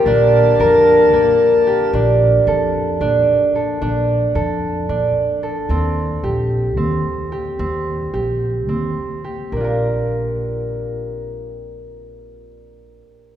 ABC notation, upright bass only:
X:1
M:7/8
L:1/8
Q:1/4=111
K:Bb
V:1 name="Upright bass" clef=bass
B,,,2 F,,2 B,,, z2 | B,,,2 F,,2 B,,, z2 | B,,,2 F,,2 B,,, z2 | E,,2 B,,,2 E,, z2 |
E,,2 B,,,2 E,, z2 | B,,,6- B,,,- | B,,,6- B,,, |]